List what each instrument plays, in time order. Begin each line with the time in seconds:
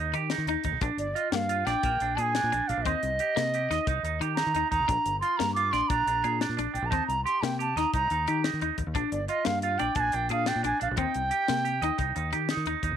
Already playing: fingered electric bass D#2, bansuri D#5
0.00 clean electric guitar D#4
0.13 fingered electric bass D#3, clean electric guitar D#4 G4, closed hi-hat
0.30 clean electric guitar D#4, snare, closed hi-hat
0.38 fingered electric bass D#3
0.46 fingered electric bass D#2, clean electric guitar D#4, closed hi-hat
0.64 fingered electric bass D#2, clean electric guitar D#4, kick, closed hi-hat
0.72 fingered electric bass B1
0.81 fingered electric bass A#1, clean electric guitar D4, kick, closed hi-hat
0.97 fingered electric bass G1, bansuri D5, closed hi-hat
1.15 clean electric guitar F4, bansuri D#5, closed hi-hat
1.32 fingered electric bass G2, clean electric guitar A#3, bansuri F5 G5, snare, closed hi-hat
1.49 clean electric guitar F4, closed hi-hat
1.66 fingered electric bass A#1, clean electric guitar D4 D5, bansuri G5, snare, closed hi-hat
1.83 fingered electric bass A#1, clean electric guitar A#3, kick, closed hi-hat
2.00 fingered electric bass A#1, clean electric guitar D4, closed hi-hat
2.16 fingered electric bass A#2, clean electric guitar D4 G#4, bansuri A5, closed hi-hat
2.21 bansuri G#5
2.35 clean electric guitar D4, snare, closed hi-hat
2.43 fingered electric bass A#2
2.52 fingered electric bass A#1, clean electric guitar D4, muted clean electric guitar stroke, closed hi-hat
2.68 fingered electric bass A#1, clean electric guitar D4, bansuri F5, closed hi-hat
2.77 fingered electric bass A#1
2.83 fingered electric bass D#2, clean electric guitar C4 D#4, bansuri D#5, kick, closed hi-hat
3.03 fingered electric bass C2, closed hi-hat
3.19 clean electric guitar G4, closed hi-hat
3.36 fingered electric bass C3, clean electric guitar A#3, snare, closed hi-hat
3.54 clean electric guitar G4, closed hi-hat
3.70 fingered electric bass D#2, clean electric guitar D#4 D#5, snare, closed hi-hat
3.87 fingered electric bass C2, clean electric guitar D#4, kick, closed hi-hat
4.03 fingered electric bass D#2, clean electric guitar D#4, closed hi-hat
4.20 fingered electric bass D#3, clean electric guitar D#4 G4, closed hi-hat
4.35 clean electric guitar D#4, bansuri A#5, snare, closed hi-hat
4.46 fingered electric bass D#3
4.54 fingered electric bass D#2, clean electric guitar D#4, closed hi-hat
4.71 fingered electric bass D#2, clean electric guitar D#4, bansuri A#5, kick, closed hi-hat
4.80 fingered electric bass C2
4.88 fingered electric bass A#1, clean electric guitar D4, muted clean electric guitar stroke, kick, closed hi-hat
5.06 fingered electric bass G1, closed hi-hat
5.21 clean electric guitar F4, bansuri C6, closed hi-hat
5.37 fingered electric bass G2, clean electric guitar A#3, bansuri A#5, snare, closed hi-hat
5.54 clean electric guitar F4, bansuri D6, closed hi-hat
5.72 fingered electric bass A#1, clean electric guitar D4 D5, bansuri C6, snare, closed hi-hat
5.88 fingered electric bass A#1, clean electric guitar D4, bansuri A#5, kick, closed hi-hat
6.06 fingered electric bass A#1, clean electric guitar D4, closed hi-hat
6.24 fingered electric bass A#2, clean electric guitar D4 G#4, closed hi-hat
6.41 clean electric guitar D4, snare, closed hi-hat
6.49 fingered electric bass A#2
6.57 fingered electric bass A#1, clean electric guitar D4, closed hi-hat
6.74 fingered electric bass A#1, clean electric guitar D4, bansuri G5, closed hi-hat
6.82 fingered electric bass A#1, bansuri A#5
6.90 fingered electric bass D#2, clean electric guitar C4 D#4, bansuri A5, kick, closed hi-hat
7.07 fingered electric bass C2, bansuri A#5, closed hi-hat
7.25 clean electric guitar G4, bansuri C6, closed hi-hat
7.42 fingered electric bass C3, clean electric guitar A#3, bansuri G5, snare, closed hi-hat
7.59 clean electric guitar G4, bansuri A5, closed hi-hat
7.76 fingered electric bass D#2, clean electric guitar D#4 D#5, bansuri A#5, snare, closed hi-hat
7.93 fingered electric bass C2, clean electric guitar D#4, bansuri A#5, kick, closed hi-hat
8.10 fingered electric bass D#2, clean electric guitar D#4, closed hi-hat
8.27 fingered electric bass D#3, clean electric guitar D#4 G4, closed hi-hat
8.44 clean electric guitar D#4, snare, closed hi-hat
8.53 fingered electric bass D#3
8.61 fingered electric bass D#2, clean electric guitar D#4, closed hi-hat
8.78 fingered electric bass D#2, muted clean electric guitar stroke, kick, closed hi-hat
8.87 fingered electric bass D#2
8.95 fingered electric bass A#1, clean electric guitar D4, kick, closed hi-hat
9.12 fingered electric bass G1, bansuri D5, closed hi-hat
9.28 clean electric guitar F4, bansuri D#5, closed hi-hat
9.45 fingered electric bass G2, clean electric guitar A#3, bansuri F5, snare, closed hi-hat
9.62 clean electric guitar F4, bansuri F5, closed hi-hat
9.79 fingered electric bass A#1, clean electric guitar D4 D5, bansuri G5, closed hi-hat
9.95 fingered electric bass A#1, clean electric guitar D4, bansuri A5, kick, closed hi-hat
10.00 bansuri G#5
10.12 fingered electric bass A#1, clean electric guitar D4, bansuri G5, closed hi-hat
10.29 fingered electric bass A#2, clean electric guitar D4 G#4, bansuri F5, closed hi-hat
10.46 clean electric guitar D4, bansuri G5, snare, closed hi-hat
10.55 fingered electric bass A#2
10.63 fingered electric bass A#1, clean electric guitar D4, bansuri G#5, closed hi-hat
10.80 fingered electric bass A#1, clean electric guitar D4, bansuri F5, closed hi-hat
10.91 fingered electric bass A#1
10.97 fingered electric bass D#2, clean electric guitar C4 D#4, bansuri G5, kick, closed hi-hat
11.14 fingered electric bass C2, closed hi-hat
11.31 clean electric guitar G4, closed hi-hat
11.48 fingered electric bass C3, clean electric guitar A#3, snare, closed hi-hat
11.65 clean electric guitar G4, closed hi-hat
11.82 fingered electric bass D#2, clean electric guitar D#4 D#5, closed hi-hat
11.98 fingered electric bass C2, clean electric guitar D#4, kick, closed hi-hat
12.16 fingered electric bass D#2, clean electric guitar D#4, closed hi-hat
12.33 fingered electric bass D#3, clean electric guitar D#4 G4, closed hi-hat
12.49 clean electric guitar D#4, snare, closed hi-hat
12.57 fingered electric bass D#3
12.66 fingered electric bass D#2, clean electric guitar D#4, closed hi-hat
12.83 fingered electric bass D#2, clean electric guitar D#4, kick, closed hi-hat
12.91 fingered electric bass C2